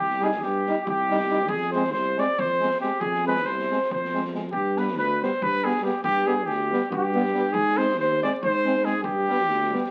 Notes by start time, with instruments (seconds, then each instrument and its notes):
Already playing: tuba C2, flugelhorn G4, trumpet G4
0.10 snare
0.20 trombone G3, euphonium D#4, flugelhorn G#4, trumpet G#4, snare
0.31 snare
0.40 tuba G2, flugelhorn G4, trumpet G4, snare
0.66 trombone G3, euphonium D#4, snare
0.85 tuba C2, flugelhorn G4, kick
0.89 trumpet G4
1.10 trombone G3, euphonium D#4, snare
1.19 snare
1.29 trombone G3, euphonium D#4, snare
1.47 tuba F2, flugelhorn G#4, trumpet G#4, kick
1.60 snare
1.72 trombone G#3, euphonium C4, flugelhorn C5, trumpet C5, snare
1.84 snare
1.92 tuba C2, flugelhorn C5, trumpet C5, snare
2.17 trombone G#3, euphonium C4, trumpet D5, flugelhorn D5, snare
2.39 tuba F2, trumpet C5, flugelhorn C5, kick
2.60 trombone G#3, euphonium C4, snare
2.71 snare
2.81 trombone G#3, euphonium C4, trumpet G4, flugelhorn G4, snare
3.00 tuba F2, trumpet G#4, flugelhorn G#4, kick
3.14 snare
3.25 trombone G#3, euphonium C4, flugelhorn B4, trumpet B4, snare
3.36 snare
3.46 tuba C2, trumpet C5, flugelhorn C5, snare
3.59 snare
3.70 trombone G#3, euphonium C4, snare
3.82 snare
3.90 tuba F2, trumpet C5, flugelhorn C5, kick
4.05 snare
4.13 trombone G#3, euphonium C4, snare
4.25 snare
4.32 trombone G#3, euphonium C4, snare
4.52 tuba G2, trumpet G4, flugelhorn G4, kick
4.77 trombone G3, euphonium B3, flugelhorn B4, trumpet B4, snare
4.88 snare
4.97 tuba D2, flugelhorn B4, trumpet B4, snare
5.21 trombone G3, euphonium B3, flugelhorn C5, trumpet C5, snare
5.42 tuba G2, flugelhorn B4, trumpet B4, kick
5.63 trombone G3, euphonium B3, flugelhorn G#4, trumpet G#4, snare
5.76 snare
5.81 trombone G3, euphonium B3, trumpet G4
5.85 flugelhorn G4, snare
6.03 tuba G2, trumpet G4, flugelhorn G4, kick
6.17 snare
6.25 trombone G3, euphonium B3, trumpet G#4
6.33 flugelhorn G#4
6.46 tuba D2, trumpet G4, snare
6.53 flugelhorn G4
6.71 trombone G3, euphonium B3, snare
6.91 tuba G2, trumpet G4, kick
6.97 flugelhorn G4
7.13 trombone G3, euphonium B3, snare
7.25 snare
7.34 trombone G3, euphonium B3, snare
7.52 tuba G#2, trumpet G#4, flugelhorn G#4, kick
7.68 snare
7.77 trombone G#3, euphonium C4, trumpet C5, snare
7.82 flugelhorn C5
7.89 snare
7.98 tuba D#2, trumpet C5, flugelhorn C5, snare
8.22 trombone G#3, euphonium C4, trumpet D5, flugelhorn D5, snare
8.42 tuba G#2, trumpet C5, flugelhorn C5, kick
8.65 trombone G#3, euphonium C4, snare
8.76 snare
8.84 trombone G#3, euphonium C4, trumpet G#4, flugelhorn G#4, snare
9.04 tuba G2, trumpet G4, flugelhorn G4, kick
9.28 trombone G3, euphonium B3, snare
9.38 snare
9.49 tuba D2, snare
9.63 snare
9.71 trombone G3, euphonium B3, snare
9.85 snare